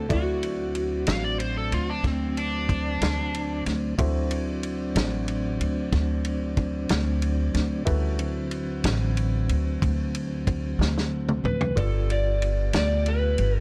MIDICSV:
0, 0, Header, 1, 7, 480
1, 0, Start_track
1, 0, Tempo, 648158
1, 73, Time_signature, 12, 3, 24, 8
1, 10073, End_track
2, 0, Start_track
2, 0, Title_t, "Electric slide guitar"
2, 0, Program_c, 0, 29
2, 0, Note_on_c, 0, 69, 72
2, 89, Note_off_c, 0, 69, 0
2, 97, Note_on_c, 0, 66, 81
2, 1015, Note_off_c, 0, 66, 0
2, 8483, Note_on_c, 0, 71, 81
2, 8725, Note_off_c, 0, 71, 0
2, 8732, Note_on_c, 0, 69, 93
2, 8970, Note_off_c, 0, 69, 0
2, 8971, Note_on_c, 0, 74, 86
2, 9445, Note_off_c, 0, 74, 0
2, 9453, Note_on_c, 0, 74, 97
2, 9690, Note_off_c, 0, 74, 0
2, 9691, Note_on_c, 0, 71, 96
2, 10061, Note_off_c, 0, 71, 0
2, 10061, Note_on_c, 0, 69, 96
2, 10073, Note_off_c, 0, 69, 0
2, 10073, End_track
3, 0, Start_track
3, 0, Title_t, "Upright piano"
3, 0, Program_c, 1, 0
3, 67, Note_on_c, 1, 64, 45
3, 70, Note_on_c, 1, 66, 43
3, 70, Note_on_c, 1, 69, 44
3, 76, Note_on_c, 1, 74, 47
3, 2921, Note_off_c, 1, 64, 0
3, 2922, Note_off_c, 1, 66, 0
3, 2922, Note_off_c, 1, 69, 0
3, 2926, Note_off_c, 1, 74, 0
3, 2947, Note_on_c, 1, 64, 60
3, 2949, Note_on_c, 1, 66, 51
3, 2950, Note_on_c, 1, 69, 50
3, 2953, Note_on_c, 1, 72, 61
3, 5801, Note_off_c, 1, 64, 0
3, 5802, Note_off_c, 1, 66, 0
3, 5802, Note_off_c, 1, 69, 0
3, 5804, Note_off_c, 1, 72, 0
3, 5814, Note_on_c, 1, 64, 58
3, 5816, Note_on_c, 1, 66, 53
3, 5820, Note_on_c, 1, 69, 54
3, 5821, Note_on_c, 1, 71, 63
3, 8674, Note_off_c, 1, 64, 0
3, 8675, Note_off_c, 1, 66, 0
3, 8677, Note_off_c, 1, 69, 0
3, 8677, Note_off_c, 1, 71, 0
3, 8706, Note_on_c, 1, 65, 47
3, 8708, Note_on_c, 1, 69, 45
3, 8710, Note_on_c, 1, 71, 43
3, 8713, Note_on_c, 1, 74, 54
3, 10073, Note_off_c, 1, 65, 0
3, 10073, Note_off_c, 1, 69, 0
3, 10073, Note_off_c, 1, 71, 0
3, 10073, Note_off_c, 1, 74, 0
3, 10073, End_track
4, 0, Start_track
4, 0, Title_t, "Electric slide guitar"
4, 0, Program_c, 2, 29
4, 800, Note_on_c, 2, 77, 99
4, 913, Note_off_c, 2, 77, 0
4, 921, Note_on_c, 2, 74, 87
4, 1033, Note_off_c, 2, 74, 0
4, 1036, Note_on_c, 2, 72, 71
4, 1151, Note_off_c, 2, 72, 0
4, 1167, Note_on_c, 2, 69, 83
4, 1276, Note_off_c, 2, 69, 0
4, 1285, Note_on_c, 2, 65, 73
4, 1396, Note_off_c, 2, 65, 0
4, 1405, Note_on_c, 2, 62, 77
4, 1516, Note_off_c, 2, 62, 0
4, 1531, Note_on_c, 2, 60, 84
4, 1755, Note_off_c, 2, 60, 0
4, 1759, Note_on_c, 2, 62, 91
4, 2688, Note_off_c, 2, 62, 0
4, 10073, End_track
5, 0, Start_track
5, 0, Title_t, "Tonewheel organ"
5, 0, Program_c, 3, 16
5, 72, Note_on_c, 3, 62, 61
5, 75, Note_on_c, 3, 54, 56
5, 76, Note_on_c, 3, 60, 60
5, 2924, Note_off_c, 3, 62, 0
5, 2926, Note_off_c, 3, 54, 0
5, 2926, Note_off_c, 3, 60, 0
5, 2946, Note_on_c, 3, 60, 61
5, 2949, Note_on_c, 3, 54, 60
5, 2950, Note_on_c, 3, 62, 57
5, 5801, Note_off_c, 3, 60, 0
5, 5803, Note_off_c, 3, 54, 0
5, 5803, Note_off_c, 3, 62, 0
5, 5831, Note_on_c, 3, 55, 54
5, 5834, Note_on_c, 3, 50, 56
5, 5834, Note_on_c, 3, 61, 56
5, 6056, Note_off_c, 3, 50, 0
5, 6063, Note_on_c, 3, 54, 59
5, 6063, Note_on_c, 3, 60, 69
5, 6065, Note_on_c, 3, 50, 65
5, 6072, Note_off_c, 3, 55, 0
5, 6074, Note_off_c, 3, 61, 0
5, 8681, Note_off_c, 3, 60, 0
5, 8682, Note_off_c, 3, 54, 0
5, 8683, Note_off_c, 3, 50, 0
5, 8706, Note_on_c, 3, 67, 55
5, 8709, Note_on_c, 3, 65, 61
5, 8710, Note_on_c, 3, 59, 61
5, 10073, Note_off_c, 3, 59, 0
5, 10073, Note_off_c, 3, 65, 0
5, 10073, Note_off_c, 3, 67, 0
5, 10073, End_track
6, 0, Start_track
6, 0, Title_t, "Upright bass"
6, 0, Program_c, 4, 32
6, 76, Note_on_c, 4, 38, 89
6, 765, Note_off_c, 4, 38, 0
6, 798, Note_on_c, 4, 33, 97
6, 1246, Note_off_c, 4, 33, 0
6, 1272, Note_on_c, 4, 38, 85
6, 1493, Note_off_c, 4, 38, 0
6, 1510, Note_on_c, 4, 38, 111
6, 2202, Note_off_c, 4, 38, 0
6, 2232, Note_on_c, 4, 38, 99
6, 2683, Note_off_c, 4, 38, 0
6, 2709, Note_on_c, 4, 38, 91
6, 2932, Note_off_c, 4, 38, 0
6, 2952, Note_on_c, 4, 38, 86
6, 3643, Note_off_c, 4, 38, 0
6, 3667, Note_on_c, 4, 33, 102
6, 4121, Note_off_c, 4, 33, 0
6, 4146, Note_on_c, 4, 38, 76
6, 4370, Note_off_c, 4, 38, 0
6, 4388, Note_on_c, 4, 38, 103
6, 5081, Note_off_c, 4, 38, 0
6, 5109, Note_on_c, 4, 38, 98
6, 5562, Note_off_c, 4, 38, 0
6, 5584, Note_on_c, 4, 38, 101
6, 5810, Note_off_c, 4, 38, 0
6, 5830, Note_on_c, 4, 38, 92
6, 6522, Note_off_c, 4, 38, 0
6, 6547, Note_on_c, 4, 33, 99
6, 7001, Note_off_c, 4, 33, 0
6, 7028, Note_on_c, 4, 38, 78
6, 7252, Note_off_c, 4, 38, 0
6, 7274, Note_on_c, 4, 38, 96
6, 7964, Note_off_c, 4, 38, 0
6, 7990, Note_on_c, 4, 38, 98
6, 8442, Note_off_c, 4, 38, 0
6, 8470, Note_on_c, 4, 38, 91
6, 8692, Note_off_c, 4, 38, 0
6, 8717, Note_on_c, 4, 31, 88
6, 9406, Note_off_c, 4, 31, 0
6, 9432, Note_on_c, 4, 38, 96
6, 9883, Note_off_c, 4, 38, 0
6, 9914, Note_on_c, 4, 31, 83
6, 10073, Note_off_c, 4, 31, 0
6, 10073, End_track
7, 0, Start_track
7, 0, Title_t, "Drums"
7, 75, Note_on_c, 9, 36, 102
7, 77, Note_on_c, 9, 51, 72
7, 149, Note_off_c, 9, 36, 0
7, 151, Note_off_c, 9, 51, 0
7, 317, Note_on_c, 9, 51, 58
7, 391, Note_off_c, 9, 51, 0
7, 554, Note_on_c, 9, 51, 53
7, 628, Note_off_c, 9, 51, 0
7, 789, Note_on_c, 9, 51, 71
7, 799, Note_on_c, 9, 38, 94
7, 863, Note_off_c, 9, 51, 0
7, 873, Note_off_c, 9, 38, 0
7, 1035, Note_on_c, 9, 51, 59
7, 1109, Note_off_c, 9, 51, 0
7, 1275, Note_on_c, 9, 51, 59
7, 1349, Note_off_c, 9, 51, 0
7, 1513, Note_on_c, 9, 36, 73
7, 1514, Note_on_c, 9, 51, 68
7, 1523, Note_on_c, 9, 38, 26
7, 1587, Note_off_c, 9, 36, 0
7, 1588, Note_off_c, 9, 51, 0
7, 1597, Note_off_c, 9, 38, 0
7, 1756, Note_on_c, 9, 51, 57
7, 1830, Note_off_c, 9, 51, 0
7, 1993, Note_on_c, 9, 36, 74
7, 1994, Note_on_c, 9, 51, 57
7, 2067, Note_off_c, 9, 36, 0
7, 2068, Note_off_c, 9, 51, 0
7, 2233, Note_on_c, 9, 51, 76
7, 2243, Note_on_c, 9, 38, 108
7, 2307, Note_off_c, 9, 51, 0
7, 2317, Note_off_c, 9, 38, 0
7, 2477, Note_on_c, 9, 51, 66
7, 2551, Note_off_c, 9, 51, 0
7, 2712, Note_on_c, 9, 51, 60
7, 2722, Note_on_c, 9, 38, 32
7, 2786, Note_off_c, 9, 51, 0
7, 2796, Note_off_c, 9, 38, 0
7, 2952, Note_on_c, 9, 36, 103
7, 2953, Note_on_c, 9, 51, 90
7, 3026, Note_off_c, 9, 36, 0
7, 3027, Note_off_c, 9, 51, 0
7, 3189, Note_on_c, 9, 51, 69
7, 3263, Note_off_c, 9, 51, 0
7, 3430, Note_on_c, 9, 51, 59
7, 3504, Note_off_c, 9, 51, 0
7, 3670, Note_on_c, 9, 51, 85
7, 3680, Note_on_c, 9, 38, 106
7, 3744, Note_off_c, 9, 51, 0
7, 3754, Note_off_c, 9, 38, 0
7, 3909, Note_on_c, 9, 51, 59
7, 3983, Note_off_c, 9, 51, 0
7, 4152, Note_on_c, 9, 51, 62
7, 4226, Note_off_c, 9, 51, 0
7, 4388, Note_on_c, 9, 36, 72
7, 4388, Note_on_c, 9, 51, 64
7, 4397, Note_on_c, 9, 38, 27
7, 4462, Note_off_c, 9, 36, 0
7, 4462, Note_off_c, 9, 51, 0
7, 4472, Note_off_c, 9, 38, 0
7, 4625, Note_on_c, 9, 51, 58
7, 4699, Note_off_c, 9, 51, 0
7, 4865, Note_on_c, 9, 51, 54
7, 4866, Note_on_c, 9, 36, 67
7, 4939, Note_off_c, 9, 51, 0
7, 4940, Note_off_c, 9, 36, 0
7, 5104, Note_on_c, 9, 51, 72
7, 5114, Note_on_c, 9, 38, 109
7, 5178, Note_off_c, 9, 51, 0
7, 5188, Note_off_c, 9, 38, 0
7, 5346, Note_on_c, 9, 51, 55
7, 5421, Note_off_c, 9, 51, 0
7, 5587, Note_on_c, 9, 51, 57
7, 5597, Note_on_c, 9, 38, 32
7, 5661, Note_off_c, 9, 51, 0
7, 5671, Note_off_c, 9, 38, 0
7, 5825, Note_on_c, 9, 51, 77
7, 5828, Note_on_c, 9, 36, 99
7, 5899, Note_off_c, 9, 51, 0
7, 5902, Note_off_c, 9, 36, 0
7, 6064, Note_on_c, 9, 51, 63
7, 6138, Note_off_c, 9, 51, 0
7, 6303, Note_on_c, 9, 51, 56
7, 6377, Note_off_c, 9, 51, 0
7, 6546, Note_on_c, 9, 51, 86
7, 6556, Note_on_c, 9, 38, 105
7, 6620, Note_off_c, 9, 51, 0
7, 6630, Note_off_c, 9, 38, 0
7, 6790, Note_on_c, 9, 51, 58
7, 6864, Note_off_c, 9, 51, 0
7, 7030, Note_on_c, 9, 51, 58
7, 7104, Note_off_c, 9, 51, 0
7, 7274, Note_on_c, 9, 36, 68
7, 7275, Note_on_c, 9, 51, 67
7, 7348, Note_off_c, 9, 36, 0
7, 7349, Note_off_c, 9, 51, 0
7, 7514, Note_on_c, 9, 51, 55
7, 7588, Note_off_c, 9, 51, 0
7, 7755, Note_on_c, 9, 36, 72
7, 7755, Note_on_c, 9, 51, 63
7, 7829, Note_off_c, 9, 36, 0
7, 7829, Note_off_c, 9, 51, 0
7, 8008, Note_on_c, 9, 38, 59
7, 8082, Note_off_c, 9, 38, 0
7, 8129, Note_on_c, 9, 38, 54
7, 8203, Note_off_c, 9, 38, 0
7, 8358, Note_on_c, 9, 47, 71
7, 8432, Note_off_c, 9, 47, 0
7, 8480, Note_on_c, 9, 45, 83
7, 8554, Note_off_c, 9, 45, 0
7, 8597, Note_on_c, 9, 43, 92
7, 8671, Note_off_c, 9, 43, 0
7, 8717, Note_on_c, 9, 36, 96
7, 8719, Note_on_c, 9, 51, 78
7, 8791, Note_off_c, 9, 36, 0
7, 8793, Note_off_c, 9, 51, 0
7, 8960, Note_on_c, 9, 51, 57
7, 9034, Note_off_c, 9, 51, 0
7, 9197, Note_on_c, 9, 51, 56
7, 9271, Note_off_c, 9, 51, 0
7, 9429, Note_on_c, 9, 51, 75
7, 9438, Note_on_c, 9, 38, 108
7, 9503, Note_off_c, 9, 51, 0
7, 9512, Note_off_c, 9, 38, 0
7, 9670, Note_on_c, 9, 51, 52
7, 9745, Note_off_c, 9, 51, 0
7, 9908, Note_on_c, 9, 51, 59
7, 9982, Note_off_c, 9, 51, 0
7, 10073, End_track
0, 0, End_of_file